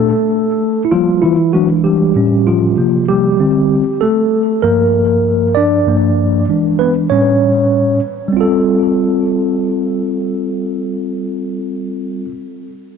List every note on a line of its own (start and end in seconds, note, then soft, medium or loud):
0.00 0.11 A#2 medium
0.00 0.82 A3 medium
0.00 0.12 D4 medium
0.00 0.82 A4 loud
0.85 0.91 E4 medium
0.91 1.21 F3 medium
0.91 1.35 G3 medium
0.91 1.35 A#3 soft
0.91 1.35 F4 medium
1.22 1.52 E3 medium
1.22 1.51 E4 medium
1.53 2.12 E3 medium
1.53 1.69 F#3 medium
1.53 2.13 G#3 soft
1.53 2.13 D4 medium
1.53 1.67 F#4 medium
1.84 2.15 G3 medium
1.84 3.04 G4 medium
2.15 2.74 A2 medium
2.15 2.75 G3 soft
2.15 2.75 C#4 medium
2.47 2.76 F3 medium
2.47 3.05 F4 medium
2.77 3.36 C3 medium
2.77 3.36 F3 soft
2.77 3.37 A#3 medium
3.08 3.38 G3 medium
3.08 4.04 G4 medium
3.39 3.82 D3 medium
3.39 3.83 G3 soft
3.39 3.83 C4 medium
4.01 4.60 A3 medium
4.01 4.65 A4 medium
4.62 5.83 G2 medium
4.62 5.83 F3 soft
4.62 5.52 A#3 medium
4.62 5.58 A#4 medium
5.55 6.45 D4 medium
5.55 6.44 D5 medium
5.86 6.45 G2 medium
5.86 6.46 F3 soft
5.86 6.46 A#3 medium
6.49 7.07 E3 soft
6.49 7.08 G#3 soft
6.49 7.08 D4 medium
6.79 6.95 B3 medium
6.79 6.93 B4 medium
7.10 7.99 A2 medium
7.10 8.00 G3 soft
7.10 8.00 C#4 medium
7.10 7.99 C#5 medium
8.29 12.25 G3 medium
8.33 12.27 C4 medium
8.37 12.29 F4 medium
8.37 12.31 A4 medium